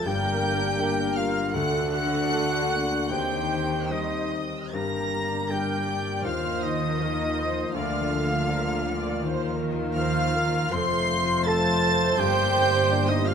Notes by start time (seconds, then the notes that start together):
0.05 G1 G2 A#3 D4 G4 A#4 G5 G6
0.31 A#3
0.55 D4
0.79 A#3 D4 G4 A#4
1.05 D4
1.16 F4 F5 F6
1.30 A#3
1.53 D2 D3 D4 F#4 A4 F#5 F#6
1.81 D4
1.91 F#4 F#5 F#6
2.07 A4
2.32 A3 D4 A4
2.58 A4
2.71 A#3
2.85 D4
3.10 D#2 D#3 C4 D#4 G4 C5 G5 G6
3.38 C4
3.65 C5
3.90 G3 C4 D#4 G4 C5 D#5 D#6
4.19 C5
4.31 D#5
4.47 C4
4.72 G1 G2 A#3 D4 G4 A#4 A#5 A#6
5.00 G3
5.26 D4
5.50 G3 D4 G4 A#4 G5 G6
5.76 D4
5.86 D5
6.02 G3
6.25 D#2 D#3 F4 C5 F5 F6
6.51 F3
6.62 D#4 D#5 D#6
6.76 F4
7.01 F3 F4 A#4
7.26 F4
7.39 C5
7.51 F3
7.74 D2 D3 F4 D5 F5 F6
8.01 F3
8.12 A4
8.25 F4
8.49 F3 F4 A#4
8.75 F4
8.88 D5
8.99 F3
9.22 D#2 D#3 C5
9.48 F3
9.59 A#4
9.72 F4
9.95 F3 F4 A#4 C5 F5 F6
10.21 F4
10.36 A#4
10.48 F3
10.71 F1 F2 A3 A4 C5 C6 C7
10.99 F3
11.12 C5
11.24 F4
11.44 F3 F4 A4 A5 A6
11.72 F4
11.95 F3
12.17 G1 G2 A#3 D4 G4 G5 G6
12.43 A#3
12.91 A#3 D4 G4 D5
13.08 D#4 D#5 D#6
13.15 D4
13.25 F4 F5 F6